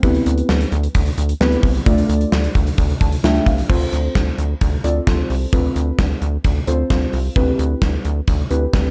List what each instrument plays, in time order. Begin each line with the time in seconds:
0.03 analog synth bass D2, synth keys B3 C4 E4 G4 B4, kick, closed hi-hat
0.15 closed hi-hat
0.26 analog synth bass D2, closed hi-hat
0.38 closed hi-hat
0.49 analog synth bass D2, snare
0.61 closed hi-hat
0.72 analog synth bass D2, closed hi-hat
0.83 closed hi-hat
0.95 analog synth bass D2, kick, closed hi-hat
1.06 closed hi-hat
1.18 analog synth bass D2, closed hi-hat
1.29 closed hi-hat
1.41 analog synth bass D2, synth keys B3 C4 E4 G4 B4, snare
1.52 closed hi-hat
1.63 analog synth bass C2, kick, open hi-hat
1.75 closed hi-hat
1.86 analog synth bass D2, synth keys A3 D4 F4 A4 D5, kick, closed hi-hat
1.98 closed hi-hat
2.09 analog synth bass D2, closed hi-hat
2.21 closed hi-hat
2.32 analog synth bass D2, snare
2.44 closed hi-hat
2.55 analog synth bass D2, kick, closed hi-hat
2.67 closed hi-hat
2.78 analog synth bass D2, kick, closed hi-hat
2.90 closed hi-hat
3.01 analog synth bass D2, synth keys A5, kick, closed hi-hat
3.12 closed hi-hat
3.24 analog synth bass D2, synth keys A3 D4 F4 A4 E5 G5, snare
3.35 closed hi-hat
3.46 analog synth bass C2, synth keys F5, kick, closed hi-hat
3.58 closed hi-hat
3.70 analog synth bass D2, synth keys C4 F4 A4 C5, kick, crash
3.93 analog synth bass D2, closed hi-hat
4.15 analog synth bass D2, kick, snare, closed hi-hat
4.38 analog synth bass D2, closed hi-hat
4.61 analog synth bass D2, kick, closed hi-hat
4.84 analog synth bass D2, synth keys C4 F4 A4 D5, closed hi-hat
5.07 analog synth bass D2, synth keys C4 F4 A4 C5, kick, snare, closed hi-hat
5.30 analog synth bass C2, open hi-hat
5.53 analog synth bass D2, synth keys C4 F4 A4 B4, kick, closed hi-hat
5.76 analog synth bass D2, closed hi-hat
5.99 analog synth bass D2, kick, snare, closed hi-hat
6.22 analog synth bass D2, closed hi-hat
6.44 analog synth bass D2, kick, closed hi-hat
6.67 analog synth bass D2, synth keys C4 F4 A4 C5, closed hi-hat
6.90 analog synth bass D2, synth keys C4 F4 A4 C5 F5, kick, snare, closed hi-hat
7.13 analog synth bass C2, open hi-hat
7.36 analog synth bass D2, synth keys C4 E4 G4 B4, kick, closed hi-hat
7.59 analog synth bass D2, closed hi-hat
7.82 analog synth bass D2, kick, snare, closed hi-hat
8.05 analog synth bass D2, closed hi-hat
8.28 analog synth bass D2, kick, closed hi-hat
8.50 analog synth bass D2, synth keys C4 E4 G4 B4, closed hi-hat
8.73 analog synth bass D2, synth keys C4 E4 G4 B4, kick, snare, closed hi-hat